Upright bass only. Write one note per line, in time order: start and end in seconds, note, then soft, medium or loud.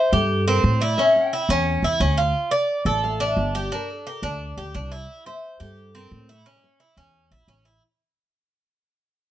0.12 0.60 G2 medium
0.64 0.94 A2 medium
1.49 1.81 E2 medium
1.83 1.99 E2 medium
2.00 2.31 D2 medium
2.85 3.34 A1 medium
3.37 3.67 G1 medium
4.22 4.55 D2 medium
4.57 4.73 D2 medium
4.75 5.05 C2 medium
5.60 6.08 G2 medium
6.11 6.42 A2 loud
6.97 7.29 E2 medium
7.31 7.47 A#1 medium
7.48 7.78 A1 medium